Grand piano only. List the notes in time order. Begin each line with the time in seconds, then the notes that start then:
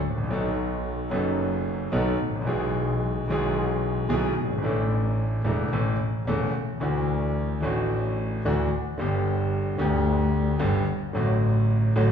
0.10 G#1
0.18 A1
0.23 A#1
0.29 B1 B2 F#3 B3 D#4 A4
1.10 F#1 F#2 F#3 B3 D#4
1.14 A4
1.92 B1 B2 F#3 B3 D#4 A4
2.27 G#1
2.35 A1
2.41 A#1
2.45 B1 B2 E3 G#3 B3 G#4
3.28 B1 B2 E3 G#3 B3
3.32 G#4
4.09 B1 B2 E3 G#3 B3 G#4
4.43 F#1
4.50 G1
4.58 G#1
4.62 A1 A2 E3 A3 D4 A4
5.44 E1 E2 E3 A3 D4 A4
5.73 A1 A2 E3 A3 C#4 A4
6.27 E1 E2 E3 A3 C#4 A4
6.80 D2 D3 E3 A3 D4 F#4
7.61 A1 A2 E3 A3 D4
7.65 F#4
8.45 D2 D3 E3 A3 D4 F#4
8.98 G1 G2 D3 G3 B3 G4
9.78 D2 D3 G3 B3 G4
10.59 G1 G2 D3 G3 B3 G4
11.13 A1 A2 D3 F#3 A3 F#4
11.96 A1 A2 D3 F#3 A3 F#4